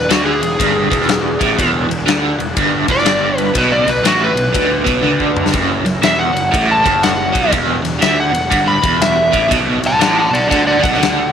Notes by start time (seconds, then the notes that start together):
Already playing: B3 D4 F#4 G#4
0.09 D2 D3 F#4, snare, ride
0.26 G#4
0.41 E1 E2, ride
0.59 G1 G2, kick, ride
0.90 E1 E2, kick, ride
1.02 snare
1.09 snare, ride
1.39 A1 A2, kick, ride
1.56 E1 E2 D4 F#4 G#4 B4, kick, ride
1.88 E1 E2, ride
2.05 D2 D3, ride
2.09 snare
2.37 E1 E2, ride
2.57 G1 G2, kick, ride
2.88 E1 E2 D5, kick, ride
2.99 G1, snare
3.05 G2, snare, ride
3.38 B4, ride
3.53 B1 B2 C#4 F#4 A4 D#5, kick, ride
3.58 B4
3.72 D5
3.85 B1 B2 B4, snare, ride
4.02 A1 A2, snare, ride
4.07 F#4
4.24 B4
4.35 B1 B2, ride
4.53 D2 D3, kick, ride
4.84 B1 B2, kick, ride
5.02 D2 D3, high tom
5.20 kick
5.37 mid tom
5.46 snare
5.52 F#1 F#2 G#3 C#4 E4 A#4, kick, ride
5.85 F#1 F#2, snare, ride
6.01 E1 E2 E5, snare, ride
6.19 F#5
6.33 F#1 F#2, ride
6.52 A1 A2, kick, ride
6.71 A5
6.82 F#1 F#2, kick, ride
7.03 F#5, snare, ride
7.32 B1 B2, kick, ride
7.50 E1 E2 D4 F#4 G#4 B4, kick, ride
7.82 E1 E2, snare, ride
7.99 D2 D3 E5, snare, ride
8.20 F#5
8.32 E1 E2, ride
8.50 G1 G2, kick, ride
8.68 B5
8.82 E1 E2, kick, ride
9.02 E5, snare, ride
9.32 A1 A2, kick, ride
9.49 B1 B2 F#4 A4 C#5 D#5, kick, ride
9.82 B1 B2, snare, ride
9.86 F#5 A5
9.99 A1 A2 F#5 A5, snare, ride
10.19 F#5 A5
10.31 B1 B2 D5 F#5, ride
10.48 D2 D3 D5 F#5, kick, ride
10.67 D5 F#5
10.80 B1 B2 F#5, kick
10.85 ride
10.94 snare
10.98 D2 D3
11.03 snare, ride